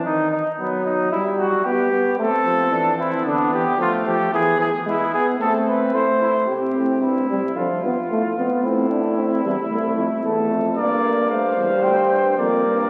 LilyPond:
<<
  \new Staff \with { instrumentName = "Trumpet" } { \time 4/4 \key a \minor \tempo 4 = 112 r1 | a'4. e'8 d'8 g'8 f'8 g'8 | gis'8 gis'8 e'8 gis'8 a'8 b'8 c''4 | r1 |
r1 | \key g \dorian d''4 f''4 g''4 d''4 | }
  \new Staff \with { instrumentName = "Flugelhorn" } { \time 4/4 \key a \minor dis'8 dis'8 b8 dis'8 e'8 fis'8 g'4 | c'4 d'8 c'8 b4 a4 | b8 r8 b4 c'4 e'8 e'8 | g'4 e'4 f'2 |
e'2. a'4 | \key g \dorian bes'4 c''2 bes'4 | }
  \new Staff \with { instrumentName = "Trombone" } { \time 4/4 \key a \minor dis8 r8 fis4 g4 b8 b8 | a8 f8 e4 d8 e8 f8 f8 | e8 e8 gis8 b8 a4 a4 | c'4. g8 f8 b8 a8 b8 |
c'8 d'8 c'8 g8 a4 a4 | \key g \dorian bes4 a8 g4. bes4 | }
  \new Staff \with { instrumentName = "Bass trombone" } { \clef bass \time 4/4 \key a \minor r1 | r1 | r1 | c8 a,8 g,8 c8 d8 g,8 a,8 f,8 |
a,4. e,8 c,8 f,8 e,8 f,8 | \key g \dorian g,4. e,8 d,8 g,8 f,8 g,8 | }
>>